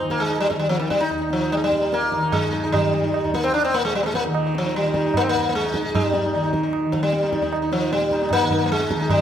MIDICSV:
0, 0, Header, 1, 4, 480
1, 0, Start_track
1, 0, Tempo, 404313
1, 1323, Time_signature, 4, 2, 24, 8
1, 6109, Tempo, 394477
1, 11058, End_track
2, 0, Start_track
2, 0, Title_t, "Sitar"
2, 0, Program_c, 0, 104
2, 0, Note_on_c, 0, 63, 42
2, 130, Note_on_c, 0, 58, 82
2, 207, Note_off_c, 0, 63, 0
2, 237, Note_on_c, 0, 56, 82
2, 245, Note_off_c, 0, 58, 0
2, 338, Note_on_c, 0, 63, 39
2, 475, Note_off_c, 0, 56, 0
2, 480, Note_on_c, 0, 55, 97
2, 571, Note_off_c, 0, 63, 0
2, 586, Note_off_c, 0, 55, 0
2, 591, Note_on_c, 0, 56, 73
2, 701, Note_off_c, 0, 56, 0
2, 705, Note_on_c, 0, 55, 81
2, 818, Note_off_c, 0, 55, 0
2, 823, Note_on_c, 0, 53, 90
2, 939, Note_off_c, 0, 53, 0
2, 943, Note_on_c, 0, 51, 74
2, 1064, Note_off_c, 0, 51, 0
2, 1072, Note_on_c, 0, 55, 85
2, 1188, Note_off_c, 0, 55, 0
2, 1192, Note_on_c, 0, 63, 98
2, 1309, Note_off_c, 0, 63, 0
2, 1321, Note_on_c, 0, 63, 42
2, 1425, Note_off_c, 0, 63, 0
2, 1439, Note_on_c, 0, 63, 36
2, 1576, Note_on_c, 0, 53, 75
2, 1662, Note_off_c, 0, 63, 0
2, 1676, Note_on_c, 0, 63, 42
2, 1804, Note_off_c, 0, 53, 0
2, 1808, Note_on_c, 0, 55, 89
2, 1860, Note_off_c, 0, 55, 0
2, 1864, Note_on_c, 0, 56, 71
2, 1905, Note_off_c, 0, 63, 0
2, 1942, Note_off_c, 0, 56, 0
2, 1947, Note_on_c, 0, 55, 83
2, 2162, Note_on_c, 0, 63, 35
2, 2297, Note_off_c, 0, 55, 0
2, 2299, Note_on_c, 0, 58, 100
2, 2388, Note_off_c, 0, 63, 0
2, 2534, Note_on_c, 0, 63, 38
2, 2627, Note_off_c, 0, 63, 0
2, 2642, Note_on_c, 0, 63, 40
2, 2759, Note_on_c, 0, 56, 89
2, 2789, Note_off_c, 0, 58, 0
2, 2868, Note_off_c, 0, 63, 0
2, 2881, Note_on_c, 0, 63, 37
2, 2984, Note_off_c, 0, 63, 0
2, 2999, Note_on_c, 0, 63, 37
2, 3117, Note_off_c, 0, 63, 0
2, 3131, Note_on_c, 0, 63, 44
2, 3229, Note_off_c, 0, 56, 0
2, 3234, Note_on_c, 0, 55, 100
2, 3353, Note_off_c, 0, 63, 0
2, 3489, Note_on_c, 0, 63, 37
2, 3595, Note_off_c, 0, 63, 0
2, 3609, Note_on_c, 0, 63, 40
2, 3714, Note_off_c, 0, 63, 0
2, 3728, Note_on_c, 0, 63, 39
2, 3835, Note_off_c, 0, 63, 0
2, 3849, Note_on_c, 0, 63, 44
2, 3966, Note_off_c, 0, 55, 0
2, 3971, Note_on_c, 0, 58, 86
2, 4070, Note_off_c, 0, 63, 0
2, 4079, Note_on_c, 0, 60, 103
2, 4092, Note_off_c, 0, 58, 0
2, 4196, Note_off_c, 0, 60, 0
2, 4201, Note_on_c, 0, 62, 107
2, 4323, Note_off_c, 0, 62, 0
2, 4328, Note_on_c, 0, 60, 104
2, 4443, Note_on_c, 0, 58, 89
2, 4449, Note_off_c, 0, 60, 0
2, 4563, Note_off_c, 0, 58, 0
2, 4568, Note_on_c, 0, 56, 94
2, 4688, Note_off_c, 0, 56, 0
2, 4693, Note_on_c, 0, 55, 92
2, 4777, Note_off_c, 0, 55, 0
2, 4782, Note_on_c, 0, 58, 69
2, 4807, Note_off_c, 0, 58, 0
2, 4819, Note_on_c, 0, 56, 87
2, 4922, Note_off_c, 0, 56, 0
2, 4926, Note_on_c, 0, 58, 90
2, 5034, Note_off_c, 0, 58, 0
2, 5052, Note_on_c, 0, 63, 38
2, 5267, Note_off_c, 0, 63, 0
2, 5301, Note_on_c, 0, 63, 39
2, 5440, Note_on_c, 0, 53, 86
2, 5506, Note_off_c, 0, 63, 0
2, 5520, Note_on_c, 0, 63, 40
2, 5649, Note_off_c, 0, 53, 0
2, 5654, Note_on_c, 0, 55, 94
2, 5739, Note_off_c, 0, 63, 0
2, 5775, Note_on_c, 0, 63, 38
2, 5871, Note_off_c, 0, 63, 0
2, 5885, Note_on_c, 0, 63, 38
2, 6000, Note_off_c, 0, 63, 0
2, 6014, Note_on_c, 0, 63, 41
2, 6132, Note_off_c, 0, 55, 0
2, 6139, Note_on_c, 0, 58, 119
2, 6189, Note_off_c, 0, 63, 0
2, 6194, Note_on_c, 0, 60, 87
2, 6197, Note_off_c, 0, 58, 0
2, 6259, Note_off_c, 0, 60, 0
2, 6287, Note_on_c, 0, 58, 112
2, 6514, Note_off_c, 0, 58, 0
2, 6529, Note_on_c, 0, 58, 70
2, 6596, Note_off_c, 0, 58, 0
2, 6603, Note_on_c, 0, 56, 102
2, 6723, Note_on_c, 0, 63, 43
2, 6838, Note_off_c, 0, 63, 0
2, 6853, Note_on_c, 0, 63, 42
2, 6951, Note_off_c, 0, 63, 0
2, 6965, Note_on_c, 0, 63, 36
2, 7085, Note_off_c, 0, 56, 0
2, 7090, Note_on_c, 0, 55, 87
2, 7185, Note_off_c, 0, 63, 0
2, 7217, Note_on_c, 0, 63, 38
2, 7310, Note_off_c, 0, 63, 0
2, 7324, Note_on_c, 0, 63, 41
2, 7436, Note_off_c, 0, 63, 0
2, 7451, Note_on_c, 0, 63, 41
2, 7553, Note_off_c, 0, 63, 0
2, 7568, Note_on_c, 0, 63, 40
2, 7662, Note_off_c, 0, 63, 0
2, 7677, Note_on_c, 0, 63, 46
2, 7758, Note_off_c, 0, 55, 0
2, 7775, Note_off_c, 0, 63, 0
2, 7789, Note_on_c, 0, 63, 35
2, 7905, Note_off_c, 0, 63, 0
2, 7919, Note_on_c, 0, 63, 42
2, 8143, Note_off_c, 0, 63, 0
2, 8271, Note_on_c, 0, 53, 72
2, 8395, Note_off_c, 0, 53, 0
2, 8400, Note_on_c, 0, 55, 86
2, 8641, Note_on_c, 0, 63, 36
2, 8746, Note_off_c, 0, 63, 0
2, 8760, Note_on_c, 0, 63, 42
2, 8863, Note_off_c, 0, 63, 0
2, 8877, Note_on_c, 0, 63, 44
2, 9071, Note_off_c, 0, 55, 0
2, 9102, Note_off_c, 0, 63, 0
2, 9122, Note_on_c, 0, 63, 42
2, 9248, Note_on_c, 0, 53, 81
2, 9341, Note_off_c, 0, 63, 0
2, 9355, Note_on_c, 0, 63, 38
2, 9487, Note_off_c, 0, 53, 0
2, 9492, Note_on_c, 0, 55, 99
2, 9580, Note_off_c, 0, 63, 0
2, 9726, Note_on_c, 0, 63, 42
2, 9844, Note_off_c, 0, 63, 0
2, 9859, Note_on_c, 0, 63, 40
2, 9930, Note_off_c, 0, 55, 0
2, 9979, Note_on_c, 0, 58, 114
2, 10071, Note_off_c, 0, 63, 0
2, 10090, Note_on_c, 0, 63, 42
2, 10198, Note_off_c, 0, 63, 0
2, 10213, Note_on_c, 0, 63, 41
2, 10369, Note_off_c, 0, 58, 0
2, 10383, Note_on_c, 0, 58, 73
2, 10426, Note_off_c, 0, 63, 0
2, 10444, Note_off_c, 0, 58, 0
2, 10455, Note_on_c, 0, 56, 104
2, 10676, Note_on_c, 0, 63, 40
2, 10792, Note_off_c, 0, 63, 0
2, 10807, Note_on_c, 0, 63, 46
2, 10920, Note_off_c, 0, 56, 0
2, 10925, Note_on_c, 0, 55, 93
2, 11020, Note_off_c, 0, 63, 0
2, 11058, Note_off_c, 0, 55, 0
2, 11058, End_track
3, 0, Start_track
3, 0, Title_t, "Tanpura"
3, 0, Program_c, 1, 104
3, 0, Note_on_c, 1, 39, 60
3, 0, Note_on_c, 1, 46, 60
3, 0, Note_on_c, 1, 51, 60
3, 20, Note_off_c, 1, 51, 0
3, 20, Note_on_c, 1, 51, 55
3, 662, Note_off_c, 1, 51, 0
3, 662, Note_on_c, 1, 51, 69
3, 1301, Note_off_c, 1, 39, 0
3, 1305, Note_on_c, 1, 39, 76
3, 1921, Note_off_c, 1, 46, 0
3, 1921, Note_on_c, 1, 46, 62
3, 2566, Note_off_c, 1, 51, 0
3, 2566, Note_on_c, 1, 51, 71
3, 3200, Note_off_c, 1, 51, 0
3, 3200, Note_on_c, 1, 51, 76
3, 3820, Note_off_c, 1, 39, 0
3, 3825, Note_on_c, 1, 39, 74
3, 4443, Note_off_c, 1, 46, 0
3, 4448, Note_on_c, 1, 46, 70
3, 5071, Note_off_c, 1, 51, 0
3, 5071, Note_on_c, 1, 51, 75
3, 5694, Note_off_c, 1, 51, 0
3, 5694, Note_on_c, 1, 51, 71
3, 6306, Note_off_c, 1, 39, 0
3, 6311, Note_on_c, 1, 39, 64
3, 6956, Note_off_c, 1, 46, 0
3, 6961, Note_on_c, 1, 46, 63
3, 7573, Note_off_c, 1, 51, 0
3, 7573, Note_on_c, 1, 51, 65
3, 8197, Note_off_c, 1, 51, 0
3, 8197, Note_on_c, 1, 51, 66
3, 8837, Note_off_c, 1, 39, 0
3, 8842, Note_on_c, 1, 39, 69
3, 9470, Note_off_c, 1, 46, 0
3, 9475, Note_on_c, 1, 46, 67
3, 10105, Note_off_c, 1, 51, 0
3, 10105, Note_on_c, 1, 51, 65
3, 10737, Note_off_c, 1, 51, 0
3, 10737, Note_on_c, 1, 51, 63
3, 11058, Note_off_c, 1, 39, 0
3, 11058, Note_off_c, 1, 46, 0
3, 11058, Note_off_c, 1, 51, 0
3, 11058, End_track
4, 0, Start_track
4, 0, Title_t, "Tabla"
4, 120, Note_on_c, 9, 37, 63
4, 239, Note_off_c, 9, 37, 0
4, 361, Note_on_c, 9, 60, 86
4, 480, Note_off_c, 9, 60, 0
4, 601, Note_on_c, 9, 37, 73
4, 717, Note_on_c, 9, 62, 66
4, 720, Note_off_c, 9, 37, 0
4, 836, Note_off_c, 9, 62, 0
4, 839, Note_on_c, 9, 62, 82
4, 957, Note_off_c, 9, 62, 0
4, 957, Note_on_c, 9, 62, 72
4, 1075, Note_on_c, 9, 37, 62
4, 1076, Note_off_c, 9, 62, 0
4, 1194, Note_off_c, 9, 37, 0
4, 1196, Note_on_c, 9, 62, 64
4, 1313, Note_on_c, 9, 60, 86
4, 1315, Note_off_c, 9, 62, 0
4, 1431, Note_off_c, 9, 60, 0
4, 1548, Note_on_c, 9, 62, 69
4, 1666, Note_off_c, 9, 62, 0
4, 1795, Note_on_c, 9, 60, 80
4, 1914, Note_off_c, 9, 60, 0
4, 2042, Note_on_c, 9, 37, 61
4, 2161, Note_off_c, 9, 37, 0
4, 2285, Note_on_c, 9, 62, 91
4, 2401, Note_off_c, 9, 62, 0
4, 2401, Note_on_c, 9, 62, 71
4, 2520, Note_off_c, 9, 62, 0
4, 2520, Note_on_c, 9, 37, 66
4, 2638, Note_off_c, 9, 37, 0
4, 2638, Note_on_c, 9, 62, 61
4, 2757, Note_off_c, 9, 62, 0
4, 2757, Note_on_c, 9, 60, 79
4, 2757, Note_on_c, 9, 64, 72
4, 2876, Note_off_c, 9, 60, 0
4, 2876, Note_off_c, 9, 64, 0
4, 3001, Note_on_c, 9, 62, 65
4, 3120, Note_off_c, 9, 62, 0
4, 3249, Note_on_c, 9, 60, 113
4, 3249, Note_on_c, 9, 64, 102
4, 3368, Note_off_c, 9, 60, 0
4, 3368, Note_off_c, 9, 64, 0
4, 3487, Note_on_c, 9, 62, 98
4, 3606, Note_off_c, 9, 62, 0
4, 3728, Note_on_c, 9, 60, 79
4, 3847, Note_off_c, 9, 60, 0
4, 3965, Note_on_c, 9, 37, 60
4, 4084, Note_off_c, 9, 37, 0
4, 4214, Note_on_c, 9, 60, 91
4, 4333, Note_off_c, 9, 60, 0
4, 4446, Note_on_c, 9, 62, 69
4, 4565, Note_off_c, 9, 62, 0
4, 4681, Note_on_c, 9, 62, 74
4, 4799, Note_off_c, 9, 62, 0
4, 4806, Note_on_c, 9, 62, 69
4, 4919, Note_on_c, 9, 37, 68
4, 4925, Note_off_c, 9, 62, 0
4, 5037, Note_off_c, 9, 37, 0
4, 5043, Note_on_c, 9, 62, 71
4, 5158, Note_on_c, 9, 60, 92
4, 5161, Note_off_c, 9, 62, 0
4, 5277, Note_off_c, 9, 60, 0
4, 5399, Note_on_c, 9, 62, 71
4, 5518, Note_off_c, 9, 62, 0
4, 5634, Note_on_c, 9, 62, 81
4, 5747, Note_off_c, 9, 62, 0
4, 5747, Note_on_c, 9, 62, 58
4, 5866, Note_off_c, 9, 62, 0
4, 5867, Note_on_c, 9, 37, 67
4, 5985, Note_off_c, 9, 37, 0
4, 5991, Note_on_c, 9, 62, 72
4, 6100, Note_on_c, 9, 60, 85
4, 6100, Note_on_c, 9, 64, 87
4, 6110, Note_off_c, 9, 62, 0
4, 6222, Note_off_c, 9, 60, 0
4, 6222, Note_off_c, 9, 64, 0
4, 6346, Note_on_c, 9, 64, 61
4, 6467, Note_off_c, 9, 64, 0
4, 6583, Note_on_c, 9, 62, 77
4, 6704, Note_off_c, 9, 62, 0
4, 6710, Note_on_c, 9, 62, 61
4, 6832, Note_off_c, 9, 62, 0
4, 6833, Note_on_c, 9, 37, 66
4, 6954, Note_off_c, 9, 37, 0
4, 6964, Note_on_c, 9, 62, 65
4, 7083, Note_on_c, 9, 60, 117
4, 7083, Note_on_c, 9, 64, 101
4, 7085, Note_off_c, 9, 62, 0
4, 7205, Note_off_c, 9, 60, 0
4, 7205, Note_off_c, 9, 64, 0
4, 7314, Note_on_c, 9, 62, 94
4, 7436, Note_off_c, 9, 62, 0
4, 7558, Note_on_c, 9, 60, 74
4, 7680, Note_off_c, 9, 60, 0
4, 7800, Note_on_c, 9, 37, 67
4, 7922, Note_off_c, 9, 37, 0
4, 8036, Note_on_c, 9, 60, 94
4, 8158, Note_off_c, 9, 60, 0
4, 8283, Note_on_c, 9, 37, 76
4, 8398, Note_on_c, 9, 62, 69
4, 8405, Note_off_c, 9, 37, 0
4, 8520, Note_off_c, 9, 62, 0
4, 8522, Note_on_c, 9, 62, 81
4, 8644, Note_off_c, 9, 62, 0
4, 8652, Note_on_c, 9, 62, 69
4, 8763, Note_on_c, 9, 37, 66
4, 8774, Note_off_c, 9, 62, 0
4, 8884, Note_off_c, 9, 37, 0
4, 8886, Note_on_c, 9, 62, 73
4, 9004, Note_on_c, 9, 60, 86
4, 9008, Note_off_c, 9, 62, 0
4, 9126, Note_off_c, 9, 60, 0
4, 9239, Note_on_c, 9, 62, 73
4, 9361, Note_off_c, 9, 62, 0
4, 9482, Note_on_c, 9, 62, 83
4, 9601, Note_off_c, 9, 62, 0
4, 9601, Note_on_c, 9, 62, 62
4, 9718, Note_on_c, 9, 37, 58
4, 9723, Note_off_c, 9, 62, 0
4, 9840, Note_off_c, 9, 37, 0
4, 9845, Note_on_c, 9, 62, 75
4, 9954, Note_on_c, 9, 60, 96
4, 9954, Note_on_c, 9, 64, 76
4, 9967, Note_off_c, 9, 62, 0
4, 10076, Note_off_c, 9, 60, 0
4, 10076, Note_off_c, 9, 64, 0
4, 10192, Note_on_c, 9, 64, 66
4, 10314, Note_off_c, 9, 64, 0
4, 10438, Note_on_c, 9, 62, 86
4, 10560, Note_off_c, 9, 62, 0
4, 10562, Note_on_c, 9, 62, 78
4, 10684, Note_off_c, 9, 62, 0
4, 10685, Note_on_c, 9, 37, 73
4, 10792, Note_on_c, 9, 62, 68
4, 10807, Note_off_c, 9, 37, 0
4, 10913, Note_off_c, 9, 62, 0
4, 10915, Note_on_c, 9, 60, 118
4, 10915, Note_on_c, 9, 64, 118
4, 11036, Note_off_c, 9, 60, 0
4, 11036, Note_off_c, 9, 64, 0
4, 11058, End_track
0, 0, End_of_file